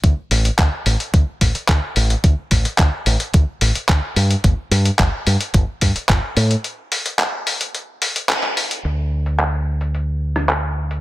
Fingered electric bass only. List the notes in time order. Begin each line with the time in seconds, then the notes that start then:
0.03 D2
0.31 A1
0.59 D2
0.86 A1
1.14 D2
1.41 A1
1.69 D2
1.96 A1
2.24 D2
2.51 A1
2.65 muted fingered electric bass stroke
2.79 D2
3.06 A1
3.34 D2
3.61 A1
3.89 D2
4.16 G2
4.44 G1
4.71 G2
4.99 G1
5.27 G2
5.54 G1
5.82 G2
5.96 muted fingered electric bass stroke
6.09 G1
6.36 A2
8.84 D2